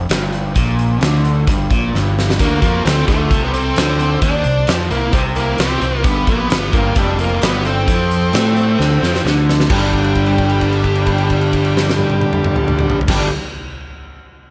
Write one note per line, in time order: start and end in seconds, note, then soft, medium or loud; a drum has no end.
0.09 0.53 G1 medium
0.09 0.55 G2 medium
0.09 snare loud
0.09 closed hi-hat loud
0.32 closed hi-hat medium
0.55 0.98 A#1 medium
0.55 1.02 A#2 loud
0.55 kick medium
0.55 closed hi-hat medium
0.79 closed hi-hat medium
1.01 1.44 D2 medium
1.01 1.47 D3 loud
1.01 snare loud
1.01 closed hi-hat medium
1.25 closed hi-hat medium
1.47 1.69 G1 medium
1.47 1.70 G2 medium
1.47 kick loud
1.47 closed hi-hat medium
1.71 1.92 A#1 medium
1.71 1.93 A#2 loud
1.71 kick loud
1.71 closed hi-hat medium
1.94 2.36 G1 medium
1.94 2.39 G2 medium
1.94 snare medium
2.19 snare medium
2.30 snare medium
2.39 2.61 D2 medium
2.39 2.62 D3 loud
2.39 2.61 A#3 medium
2.39 2.63 F#4 medium
2.39 kick medium
2.39 closed hi-hat medium
2.62 2.84 F2 medium
2.62 2.85 F3 loud
2.62 2.85 A#3 medium
2.62 2.85 F#4 medium
2.62 kick medium
2.62 closed hi-hat medium
2.85 3.06 D2 medium
2.85 3.04 D3 medium
2.85 3.07 C4 medium
2.85 3.08 A4 medium
2.85 snare loud
2.85 closed hi-hat medium
3.07 3.29 D2 medium
3.07 3.30 D3 medium
3.07 3.44 A3 medium
3.07 3.45 F4 medium
3.07 kick loud
3.07 snare soft
3.07 closed hi-hat medium
3.31 3.73 C2 medium
3.31 3.76 C3 loud
3.31 kick loud
3.31 closed hi-hat medium
3.44 3.53 B3 medium
3.44 3.54 G4 medium
3.53 4.18 C4 medium
3.53 4.19 A4 medium
3.53 closed hi-hat medium
3.76 4.19 D2 medium
3.76 4.22 D3 loud
3.76 snare loud
3.76 closed hi-hat loud
4.00 closed hi-hat medium
4.22 4.43 D#2 medium
4.22 4.45 D#3 loud
4.22 4.69 D4 loud
4.22 4.64 C5 medium
4.22 kick loud
4.22 closed hi-hat medium
4.44 4.66 C2 medium
4.44 4.64 C3 medium
4.44 closed hi-hat medium
4.67 4.89 F2 medium
4.67 4.90 F3 medium
4.67 4.74 C4 medium
4.67 4.74 G4 medium
4.67 snare loud
4.67 closed hi-hat medium
4.90 5.12 C2 medium
4.90 5.09 C3 medium
4.90 5.12 A#3 medium
4.90 5.12 E4 medium
4.90 closed hi-hat medium
5.13 5.56 C2 medium
5.13 5.57 C3 medium
5.13 5.20 C4 loud
5.13 5.20 G4 medium
5.13 kick loud
5.13 closed hi-hat medium
5.35 5.60 A#3 medium
5.35 5.58 E4 medium
5.35 closed hi-hat medium
5.58 5.80 C2 medium
5.58 5.77 C3 medium
5.58 6.04 C4 medium
5.58 6.02 G4 medium
5.58 snare loud
5.58 closed hi-hat medium
5.81 6.03 C2 medium
5.81 6.00 C3 medium
5.81 closed hi-hat medium
6.04 6.26 G1 loud
6.04 6.27 G2 loud
6.04 6.28 B3 medium
6.04 6.26 G4 medium
6.04 kick loud
6.04 closed hi-hat medium
6.27 6.49 A#1 medium
6.27 6.50 A#2 loud
6.27 6.73 B3 loud
6.27 6.71 G4 medium
6.27 kick loud
6.27 closed hi-hat medium
6.50 6.72 G1 medium
6.50 6.69 G2 medium
6.50 snare loud
6.50 closed hi-hat medium
6.73 6.95 G1 medium
6.73 6.96 G2 loud
6.73 6.97 A#3 medium
6.73 6.95 F4 medium
6.73 kick loud
6.73 closed hi-hat medium
6.95 7.39 F1 medium
6.95 7.41 F2 loud
6.95 7.20 G3 medium
6.95 7.18 D4 medium
6.95 kick loud
6.95 closed hi-hat medium
7.19 7.43 A#3 medium
7.19 7.40 F4 medium
7.19 closed hi-hat medium
7.42 7.85 G1 medium
7.42 7.87 G2 loud
7.42 7.65 B3 medium
7.42 7.64 G4 medium
7.42 snare loud
7.42 closed hi-hat loud
7.65 9.21 C4 medium
7.65 9.22 A4 medium
7.65 closed hi-hat medium
7.87 8.30 F2 medium
7.87 8.33 F3 loud
7.87 kick loud
7.87 closed hi-hat loud
8.11 closed hi-hat medium
8.32 8.76 A2 medium
8.32 8.78 A3 medium
8.32 snare loud
8.32 closed hi-hat medium
8.57 closed hi-hat medium
8.79 9.01 D2 medium
8.79 9.01 D3 medium
8.79 snare medium
9.02 9.23 F2 medium
9.02 9.24 F3 loud
9.02 snare medium
9.15 snare medium
9.25 9.67 D2 medium
9.25 9.69 D3 medium
9.25 snare medium
9.49 snare medium
9.60 snare medium
9.68 12.98 G1 medium
9.68 13.07 G2 medium
9.68 13.09 D3 loud
9.68 12.99 G3 medium
9.68 12.98 D4 medium
9.68 kick loud
9.68 crash medium
9.72 13.11 G3 loud
9.93 kick medium
9.93 crash soft
10.04 crash soft
10.15 kick medium
10.15 crash soft
10.26 crash soft
10.38 kick medium
10.38 crash soft
10.50 crash soft
10.61 kick medium
10.61 crash soft
10.72 crash soft
10.84 kick medium
10.84 crash soft
10.95 crash medium
11.06 kick medium
11.06 crash medium
11.18 crash soft
11.30 kick medium
11.30 crash medium
11.41 crash medium
11.53 kick medium
11.53 crash medium
11.65 crash medium
11.77 snare medium
11.90 snare medium
11.99 high tom medium
12.10 high tom loud
12.21 high tom loud
12.33 mid tom loud
12.44 mid tom loud
12.56 mid tom loud
12.68 mid tom loud
12.79 mid tom loud
12.90 floor tom loud
13.01 floor tom loud
13.07 13.27 G1 medium
13.07 13.28 G2 medium
13.07 13.29 D3 loud
13.07 13.28 G3 medium
13.07 13.30 G3 loud
13.07 13.28 D4 medium
13.07 kick loud
13.07 snare loud
13.07 crash loud